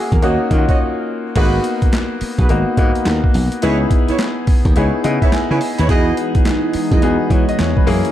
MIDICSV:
0, 0, Header, 1, 7, 480
1, 0, Start_track
1, 0, Key_signature, 5, "minor"
1, 0, Tempo, 566038
1, 1153, Time_signature, 4, 2, 24, 8
1, 6883, End_track
2, 0, Start_track
2, 0, Title_t, "Horn section"
2, 0, Program_c, 0, 61
2, 190, Note_on_c, 0, 66, 78
2, 194, Note_on_c, 0, 73, 76
2, 197, Note_on_c, 0, 75, 80
2, 332, Note_off_c, 0, 66, 0
2, 333, Note_off_c, 0, 73, 0
2, 335, Note_off_c, 0, 75, 0
2, 581, Note_on_c, 0, 66, 75
2, 584, Note_on_c, 0, 73, 67
2, 587, Note_on_c, 0, 75, 79
2, 665, Note_off_c, 0, 66, 0
2, 666, Note_off_c, 0, 73, 0
2, 668, Note_off_c, 0, 75, 0
2, 1151, Note_on_c, 0, 66, 94
2, 1153, Note_on_c, 0, 68, 94
2, 1155, Note_on_c, 0, 71, 108
2, 1378, Note_off_c, 0, 66, 0
2, 1379, Note_off_c, 0, 68, 0
2, 1380, Note_off_c, 0, 71, 0
2, 2024, Note_on_c, 0, 66, 70
2, 2026, Note_on_c, 0, 68, 65
2, 2028, Note_on_c, 0, 71, 78
2, 2106, Note_off_c, 0, 66, 0
2, 2107, Note_off_c, 0, 68, 0
2, 2108, Note_off_c, 0, 71, 0
2, 3072, Note_on_c, 0, 64, 100
2, 3075, Note_on_c, 0, 71, 92
2, 3077, Note_on_c, 0, 73, 108
2, 3213, Note_off_c, 0, 64, 0
2, 3214, Note_off_c, 0, 71, 0
2, 3215, Note_off_c, 0, 73, 0
2, 3464, Note_on_c, 0, 64, 78
2, 3466, Note_on_c, 0, 71, 68
2, 3469, Note_on_c, 0, 73, 87
2, 3546, Note_off_c, 0, 64, 0
2, 3547, Note_off_c, 0, 71, 0
2, 3549, Note_off_c, 0, 73, 0
2, 4034, Note_on_c, 0, 64, 79
2, 4037, Note_on_c, 0, 71, 73
2, 4039, Note_on_c, 0, 73, 93
2, 4174, Note_off_c, 0, 64, 0
2, 4175, Note_off_c, 0, 71, 0
2, 4176, Note_off_c, 0, 73, 0
2, 4427, Note_on_c, 0, 64, 78
2, 4428, Note_on_c, 0, 71, 63
2, 4431, Note_on_c, 0, 73, 80
2, 4508, Note_off_c, 0, 64, 0
2, 4509, Note_off_c, 0, 71, 0
2, 4510, Note_off_c, 0, 73, 0
2, 4665, Note_on_c, 0, 64, 81
2, 4668, Note_on_c, 0, 71, 75
2, 4669, Note_on_c, 0, 73, 81
2, 4747, Note_off_c, 0, 64, 0
2, 4748, Note_off_c, 0, 71, 0
2, 4749, Note_off_c, 0, 73, 0
2, 4906, Note_on_c, 0, 64, 85
2, 4908, Note_on_c, 0, 71, 75
2, 4912, Note_on_c, 0, 73, 94
2, 4985, Note_off_c, 0, 64, 0
2, 4989, Note_off_c, 0, 71, 0
2, 4990, Note_off_c, 0, 73, 0
2, 4996, Note_on_c, 0, 64, 100
2, 4998, Note_on_c, 0, 68, 100
2, 5001, Note_on_c, 0, 75, 109
2, 5220, Note_off_c, 0, 64, 0
2, 5222, Note_off_c, 0, 68, 0
2, 5223, Note_off_c, 0, 75, 0
2, 5864, Note_on_c, 0, 64, 66
2, 5867, Note_on_c, 0, 68, 64
2, 5869, Note_on_c, 0, 75, 75
2, 5946, Note_off_c, 0, 64, 0
2, 5948, Note_off_c, 0, 68, 0
2, 5949, Note_off_c, 0, 75, 0
2, 6883, End_track
3, 0, Start_track
3, 0, Title_t, "Grand piano"
3, 0, Program_c, 1, 0
3, 0, Control_c, 1, 64, 127
3, 0, Note_on_c, 1, 58, 93
3, 0, Note_on_c, 1, 61, 81
3, 0, Note_on_c, 1, 64, 91
3, 0, Note_on_c, 1, 66, 68
3, 0, Note_on_c, 1, 68, 73
3, 98, Note_off_c, 1, 68, 0
3, 107, Note_on_c, 1, 70, 62
3, 191, Note_off_c, 1, 58, 0
3, 191, Note_on_c, 1, 58, 87
3, 194, Note_off_c, 1, 61, 0
3, 194, Note_on_c, 1, 61, 73
3, 198, Note_on_c, 1, 63, 79
3, 201, Note_off_c, 1, 66, 0
3, 201, Note_on_c, 1, 66, 92
3, 205, Control_c, 1, 64, 0
3, 212, Note_off_c, 1, 64, 0
3, 334, Note_off_c, 1, 70, 0
3, 343, Control_c, 1, 64, 127
3, 399, Note_off_c, 1, 58, 0
3, 401, Note_off_c, 1, 61, 0
3, 403, Note_off_c, 1, 63, 0
3, 405, Note_off_c, 1, 66, 0
3, 429, Note_on_c, 1, 58, 79
3, 431, Note_on_c, 1, 61, 80
3, 436, Note_on_c, 1, 63, 77
3, 440, Note_on_c, 1, 65, 70
3, 493, Note_on_c, 1, 66, 87
3, 506, Note_off_c, 1, 65, 0
3, 1047, Note_off_c, 1, 58, 0
3, 1048, Note_off_c, 1, 61, 0
3, 1050, Note_off_c, 1, 63, 0
3, 1079, Note_off_c, 1, 66, 0
3, 1153, Note_on_c, 1, 58, 88
3, 1156, Note_on_c, 1, 59, 77
3, 1160, Note_on_c, 1, 63, 78
3, 1162, Note_on_c, 1, 66, 96
3, 1163, Control_c, 1, 64, 0
3, 1323, Control_c, 1, 64, 127
3, 1953, Note_off_c, 1, 58, 0
3, 1955, Note_off_c, 1, 59, 0
3, 1957, Note_off_c, 1, 63, 0
3, 1958, Note_off_c, 1, 66, 0
3, 2111, Note_on_c, 1, 58, 81
3, 2117, Note_on_c, 1, 59, 74
3, 2119, Note_on_c, 1, 63, 72
3, 2123, Note_on_c, 1, 66, 87
3, 2320, Note_off_c, 1, 58, 0
3, 2323, Note_off_c, 1, 59, 0
3, 2324, Note_off_c, 1, 63, 0
3, 2325, Note_off_c, 1, 66, 0
3, 2354, Note_on_c, 1, 58, 78
3, 2357, Note_on_c, 1, 59, 68
3, 2361, Note_on_c, 1, 63, 71
3, 2364, Note_on_c, 1, 66, 86
3, 2969, Note_off_c, 1, 58, 0
3, 2971, Note_off_c, 1, 59, 0
3, 2973, Note_off_c, 1, 63, 0
3, 2975, Note_off_c, 1, 66, 0
3, 3076, Note_on_c, 1, 59, 84
3, 3080, Note_on_c, 1, 63, 78
3, 3084, Note_on_c, 1, 64, 84
3, 3085, Control_c, 1, 64, 0
3, 3086, Note_on_c, 1, 68, 90
3, 3224, Control_c, 1, 64, 127
3, 3875, Note_off_c, 1, 59, 0
3, 3877, Note_off_c, 1, 63, 0
3, 3878, Note_off_c, 1, 64, 0
3, 3880, Note_off_c, 1, 68, 0
3, 4034, Note_on_c, 1, 59, 80
3, 4037, Note_on_c, 1, 63, 75
3, 4041, Note_on_c, 1, 64, 73
3, 4044, Note_on_c, 1, 68, 88
3, 4241, Note_off_c, 1, 59, 0
3, 4242, Note_off_c, 1, 63, 0
3, 4245, Note_off_c, 1, 64, 0
3, 4246, Note_off_c, 1, 68, 0
3, 4271, Note_on_c, 1, 59, 84
3, 4276, Note_on_c, 1, 63, 69
3, 4277, Note_on_c, 1, 75, 75
3, 4279, Note_on_c, 1, 64, 70
3, 4280, Note_on_c, 1, 68, 87
3, 4416, Note_off_c, 1, 75, 0
3, 4427, Note_on_c, 1, 76, 73
3, 4508, Note_off_c, 1, 76, 0
3, 4518, Note_on_c, 1, 80, 74
3, 4656, Note_off_c, 1, 80, 0
3, 4669, Note_on_c, 1, 80, 70
3, 4888, Note_off_c, 1, 59, 0
3, 4890, Note_off_c, 1, 63, 0
3, 4892, Note_off_c, 1, 64, 0
3, 4892, Note_off_c, 1, 68, 0
3, 4973, Note_off_c, 1, 80, 0
3, 4994, Note_on_c, 1, 59, 82
3, 4996, Note_on_c, 1, 63, 82
3, 5001, Note_on_c, 1, 66, 76
3, 5004, Control_c, 1, 64, 0
3, 5004, Note_on_c, 1, 68, 98
3, 5175, Control_c, 1, 64, 127
3, 5794, Note_off_c, 1, 59, 0
3, 5795, Note_off_c, 1, 63, 0
3, 5797, Note_off_c, 1, 66, 0
3, 5799, Note_off_c, 1, 68, 0
3, 5953, Note_on_c, 1, 59, 84
3, 5958, Note_on_c, 1, 63, 75
3, 5961, Note_on_c, 1, 66, 77
3, 5964, Note_on_c, 1, 68, 92
3, 6161, Note_off_c, 1, 59, 0
3, 6163, Note_off_c, 1, 63, 0
3, 6164, Note_off_c, 1, 66, 0
3, 6166, Note_off_c, 1, 68, 0
3, 6198, Note_on_c, 1, 73, 65
3, 6339, Note_off_c, 1, 73, 0
3, 6350, Note_on_c, 1, 75, 74
3, 6432, Note_off_c, 1, 75, 0
3, 6439, Note_on_c, 1, 73, 67
3, 6580, Note_off_c, 1, 73, 0
3, 6588, Note_on_c, 1, 71, 63
3, 6672, Note_on_c, 1, 58, 98
3, 6674, Note_on_c, 1, 61, 94
3, 6677, Note_on_c, 1, 64, 86
3, 6681, Note_on_c, 1, 68, 106
3, 6683, Control_c, 1, 64, 0
3, 6814, Note_off_c, 1, 71, 0
3, 6833, Control_c, 1, 64, 127
3, 6883, Note_off_c, 1, 58, 0
3, 6883, Note_off_c, 1, 61, 0
3, 6883, Note_off_c, 1, 64, 0
3, 6883, Note_off_c, 1, 68, 0
3, 6883, End_track
4, 0, Start_track
4, 0, Title_t, "Analog synth pad"
4, 0, Program_c, 2, 89
4, 4996, Note_on_c, 2, 52, 86
4, 4996, Note_on_c, 2, 63, 76
4, 4999, Note_on_c, 2, 56, 73
4, 6658, Note_off_c, 2, 52, 0
4, 6658, Note_off_c, 2, 63, 0
4, 6659, Note_off_c, 2, 56, 0
4, 6668, Note_on_c, 2, 58, 81
4, 6669, Note_on_c, 2, 52, 82
4, 6669, Note_on_c, 2, 66, 89
4, 6883, Note_off_c, 2, 52, 0
4, 6883, Note_off_c, 2, 58, 0
4, 6883, Note_off_c, 2, 66, 0
4, 6883, End_track
5, 0, Start_track
5, 0, Title_t, "Slap bass"
5, 0, Program_c, 3, 36
5, 103, Note_on_c, 3, 40, 85
5, 172, Note_off_c, 3, 40, 0
5, 199, Note_on_c, 3, 39, 112
5, 312, Note_off_c, 3, 39, 0
5, 432, Note_on_c, 3, 51, 98
5, 548, Note_off_c, 3, 51, 0
5, 1152, Note_on_c, 3, 32, 96
5, 1336, Note_off_c, 3, 32, 0
5, 2024, Note_on_c, 3, 35, 84
5, 2092, Note_off_c, 3, 35, 0
5, 2119, Note_on_c, 3, 32, 106
5, 2233, Note_off_c, 3, 32, 0
5, 2355, Note_on_c, 3, 44, 111
5, 2470, Note_off_c, 3, 44, 0
5, 2598, Note_on_c, 3, 39, 96
5, 2712, Note_off_c, 3, 39, 0
5, 2838, Note_on_c, 3, 35, 100
5, 2952, Note_off_c, 3, 35, 0
5, 3080, Note_on_c, 3, 37, 108
5, 3261, Note_off_c, 3, 37, 0
5, 3945, Note_on_c, 3, 39, 84
5, 4013, Note_off_c, 3, 39, 0
5, 4041, Note_on_c, 3, 37, 114
5, 4154, Note_off_c, 3, 37, 0
5, 4278, Note_on_c, 3, 49, 97
5, 4392, Note_off_c, 3, 49, 0
5, 4670, Note_on_c, 3, 49, 91
5, 4736, Note_off_c, 3, 49, 0
5, 4911, Note_on_c, 3, 39, 89
5, 4976, Note_off_c, 3, 39, 0
5, 4997, Note_on_c, 3, 40, 99
5, 5179, Note_off_c, 3, 40, 0
5, 5865, Note_on_c, 3, 42, 89
5, 5932, Note_off_c, 3, 42, 0
5, 5960, Note_on_c, 3, 40, 114
5, 6073, Note_off_c, 3, 40, 0
5, 6196, Note_on_c, 3, 52, 106
5, 6310, Note_off_c, 3, 52, 0
5, 6442, Note_on_c, 3, 40, 97
5, 6554, Note_off_c, 3, 40, 0
5, 6680, Note_on_c, 3, 42, 107
5, 6793, Note_off_c, 3, 42, 0
5, 6883, End_track
6, 0, Start_track
6, 0, Title_t, "Muted slap bass strokes"
6, 1548, Note_on_c, 9, 29, 48
6, 1632, Note_off_c, 9, 29, 0
6, 1878, Note_on_c, 9, 29, 47
6, 1963, Note_off_c, 9, 29, 0
6, 3472, Note_on_c, 9, 29, 46
6, 3556, Note_off_c, 9, 29, 0
6, 3797, Note_on_c, 9, 29, 45
6, 3882, Note_off_c, 9, 29, 0
6, 5388, Note_on_c, 9, 29, 47
6, 5473, Note_off_c, 9, 29, 0
6, 5722, Note_on_c, 9, 29, 47
6, 5806, Note_off_c, 9, 29, 0
6, 6883, End_track
7, 0, Start_track
7, 0, Title_t, "Drums"
7, 101, Note_on_c, 9, 36, 97
7, 102, Note_on_c, 9, 42, 49
7, 186, Note_off_c, 9, 36, 0
7, 187, Note_off_c, 9, 42, 0
7, 190, Note_on_c, 9, 42, 65
7, 275, Note_off_c, 9, 42, 0
7, 431, Note_on_c, 9, 36, 86
7, 431, Note_on_c, 9, 42, 73
7, 515, Note_off_c, 9, 36, 0
7, 516, Note_off_c, 9, 42, 0
7, 582, Note_on_c, 9, 36, 83
7, 583, Note_on_c, 9, 42, 47
7, 667, Note_off_c, 9, 36, 0
7, 668, Note_off_c, 9, 42, 0
7, 1149, Note_on_c, 9, 42, 83
7, 1149, Note_on_c, 9, 49, 94
7, 1150, Note_on_c, 9, 36, 116
7, 1234, Note_off_c, 9, 42, 0
7, 1234, Note_off_c, 9, 49, 0
7, 1235, Note_off_c, 9, 36, 0
7, 1390, Note_on_c, 9, 42, 71
7, 1474, Note_off_c, 9, 42, 0
7, 1543, Note_on_c, 9, 42, 53
7, 1544, Note_on_c, 9, 36, 87
7, 1628, Note_off_c, 9, 42, 0
7, 1629, Note_off_c, 9, 36, 0
7, 1633, Note_on_c, 9, 42, 76
7, 1635, Note_on_c, 9, 38, 117
7, 1644, Note_on_c, 9, 39, 97
7, 1717, Note_off_c, 9, 42, 0
7, 1719, Note_off_c, 9, 38, 0
7, 1729, Note_off_c, 9, 39, 0
7, 1873, Note_on_c, 9, 46, 68
7, 1958, Note_off_c, 9, 46, 0
7, 2022, Note_on_c, 9, 36, 100
7, 2023, Note_on_c, 9, 42, 52
7, 2107, Note_off_c, 9, 36, 0
7, 2108, Note_off_c, 9, 42, 0
7, 2113, Note_on_c, 9, 42, 69
7, 2198, Note_off_c, 9, 42, 0
7, 2352, Note_on_c, 9, 36, 90
7, 2352, Note_on_c, 9, 42, 69
7, 2437, Note_off_c, 9, 36, 0
7, 2437, Note_off_c, 9, 42, 0
7, 2505, Note_on_c, 9, 42, 52
7, 2590, Note_off_c, 9, 42, 0
7, 2590, Note_on_c, 9, 38, 103
7, 2592, Note_on_c, 9, 42, 70
7, 2600, Note_on_c, 9, 39, 77
7, 2675, Note_off_c, 9, 38, 0
7, 2677, Note_off_c, 9, 42, 0
7, 2685, Note_off_c, 9, 39, 0
7, 2746, Note_on_c, 9, 36, 86
7, 2831, Note_off_c, 9, 36, 0
7, 2835, Note_on_c, 9, 46, 83
7, 2920, Note_off_c, 9, 46, 0
7, 2983, Note_on_c, 9, 42, 62
7, 3068, Note_off_c, 9, 42, 0
7, 3071, Note_on_c, 9, 42, 80
7, 3156, Note_off_c, 9, 42, 0
7, 3312, Note_on_c, 9, 36, 94
7, 3312, Note_on_c, 9, 42, 75
7, 3397, Note_off_c, 9, 36, 0
7, 3397, Note_off_c, 9, 42, 0
7, 3463, Note_on_c, 9, 42, 49
7, 3548, Note_off_c, 9, 42, 0
7, 3549, Note_on_c, 9, 42, 77
7, 3551, Note_on_c, 9, 38, 124
7, 3561, Note_on_c, 9, 39, 91
7, 3634, Note_off_c, 9, 42, 0
7, 3636, Note_off_c, 9, 38, 0
7, 3646, Note_off_c, 9, 39, 0
7, 3792, Note_on_c, 9, 46, 66
7, 3795, Note_on_c, 9, 36, 94
7, 3877, Note_off_c, 9, 46, 0
7, 3879, Note_off_c, 9, 36, 0
7, 3944, Note_on_c, 9, 36, 101
7, 3945, Note_on_c, 9, 42, 55
7, 4029, Note_off_c, 9, 36, 0
7, 4030, Note_off_c, 9, 42, 0
7, 4033, Note_on_c, 9, 42, 67
7, 4118, Note_off_c, 9, 42, 0
7, 4275, Note_on_c, 9, 42, 71
7, 4360, Note_off_c, 9, 42, 0
7, 4426, Note_on_c, 9, 36, 81
7, 4428, Note_on_c, 9, 42, 49
7, 4511, Note_off_c, 9, 36, 0
7, 4513, Note_off_c, 9, 42, 0
7, 4513, Note_on_c, 9, 38, 96
7, 4515, Note_on_c, 9, 42, 71
7, 4523, Note_on_c, 9, 39, 84
7, 4598, Note_off_c, 9, 38, 0
7, 4600, Note_off_c, 9, 42, 0
7, 4608, Note_off_c, 9, 39, 0
7, 4756, Note_on_c, 9, 46, 78
7, 4841, Note_off_c, 9, 46, 0
7, 4906, Note_on_c, 9, 42, 59
7, 4991, Note_off_c, 9, 42, 0
7, 4995, Note_on_c, 9, 36, 118
7, 4995, Note_on_c, 9, 42, 82
7, 5079, Note_off_c, 9, 36, 0
7, 5080, Note_off_c, 9, 42, 0
7, 5235, Note_on_c, 9, 42, 70
7, 5320, Note_off_c, 9, 42, 0
7, 5383, Note_on_c, 9, 42, 49
7, 5386, Note_on_c, 9, 36, 87
7, 5468, Note_off_c, 9, 42, 0
7, 5471, Note_off_c, 9, 36, 0
7, 5471, Note_on_c, 9, 42, 77
7, 5473, Note_on_c, 9, 38, 114
7, 5483, Note_on_c, 9, 39, 90
7, 5556, Note_off_c, 9, 42, 0
7, 5558, Note_off_c, 9, 38, 0
7, 5568, Note_off_c, 9, 39, 0
7, 5711, Note_on_c, 9, 46, 70
7, 5796, Note_off_c, 9, 46, 0
7, 5863, Note_on_c, 9, 36, 97
7, 5865, Note_on_c, 9, 42, 52
7, 5948, Note_off_c, 9, 36, 0
7, 5949, Note_off_c, 9, 42, 0
7, 5954, Note_on_c, 9, 42, 63
7, 6039, Note_off_c, 9, 42, 0
7, 6193, Note_on_c, 9, 36, 92
7, 6195, Note_on_c, 9, 42, 69
7, 6278, Note_off_c, 9, 36, 0
7, 6280, Note_off_c, 9, 42, 0
7, 6348, Note_on_c, 9, 42, 50
7, 6433, Note_off_c, 9, 42, 0
7, 6434, Note_on_c, 9, 38, 100
7, 6435, Note_on_c, 9, 42, 72
7, 6443, Note_on_c, 9, 39, 81
7, 6519, Note_off_c, 9, 38, 0
7, 6520, Note_off_c, 9, 42, 0
7, 6528, Note_off_c, 9, 39, 0
7, 6586, Note_on_c, 9, 36, 90
7, 6671, Note_off_c, 9, 36, 0
7, 6676, Note_on_c, 9, 46, 83
7, 6760, Note_off_c, 9, 46, 0
7, 6824, Note_on_c, 9, 42, 63
7, 6883, Note_off_c, 9, 42, 0
7, 6883, End_track
0, 0, End_of_file